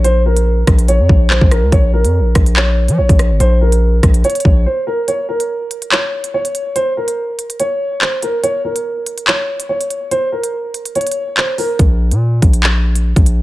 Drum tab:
HH |x-----x-----x-x-x-----------x---|x-----x-----x-x-------x---x-x---|x-----x-----x-x-xxxx------------|x-----x-----x-x-------x---x-x---|
CP |------------------------x-------|----------------x---------------|--------------------------------|----------------x---------------|
SD |------------r---------------r---|------------r---------------r---|------------r-------------------|--------------------------------|
BD |------------o-------o-----o-----|o-----------o-------------o-----|------------o-------o-----------|--------------------------------|

HH |x-----x-----x-x-x-----------x---|x-----x-----x-x-------x---x-x---|x-----x-----x-x-xxxx--------o---|x-----x-----x-x-------x---x-x---|
CP |------------------------x-------|----------------x---------------|------------------------x-------|----------------x---------------|
SD |--------------------------------|--------------------------------|--------------------------------|--------------------------------|
BD |--------------------------------|--------------------------------|--------------------------------|o-----------o-------------o-----|